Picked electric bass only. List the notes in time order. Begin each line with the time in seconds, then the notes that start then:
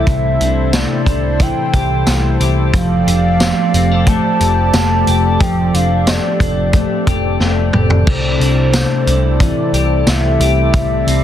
0.07 C2
0.40 C2
1.06 C2
1.74 C2
2.07 C2
2.40 C2
2.73 F1
3.07 F1
3.74 F1
4.41 F1
4.74 F1
5.07 F1
5.41 F1
5.74 F1
6.40 F1
7.07 F1
7.41 F1
7.74 F1
8.07 C2
8.40 C2
9.07 C2
9.73 C2
10.07 C2
10.40 C2
10.74 C2
11.07 C2